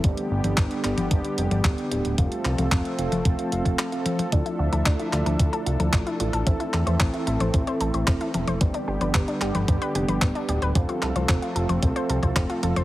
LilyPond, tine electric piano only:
\new Staff \with { instrumentName = "Tine electric piano" } { \time 4/4 \key g \mixolydian \tempo 4 = 112 <b d' g' d''>8. <b d' g' d''>8. <b d' g' d''>8. <b d' g' d''>8 <b d' g' d''>8. <b d' g' d''>8 | <c' f' a' f''>8. <c' f' a' f''>8. <c' f' a' f''>8. <c' f' a' f''>16 <c' f' a' f''>8. <c' f' a' f''>8. | <a e' f' d''>8. <a e' f' d''>8. <a e' f' d''>8. <a e' f' d''>8 <a e' f' d''>8. <a e' f' d''>8 | <c' e' a' e''>8. <c' e' a' e''>8. <c' e' a' e''>8. <c' e' a' e''>8 <c' e' a' e''>8. <c' e' a' e''>8 |
<b d' g' d''>8. <b d' g' d''>8. <b d' g' d''>8. <b d' g' d''>8 <b d' g' d''>8. <b d' g' d''>8 | <c' f' a' f''>8. <c' f' a' f''>8. <c' f' a' f''>8. <c' f' a' f''>8 <c' f' a' f''>8. <c' f' a' f''>8 | }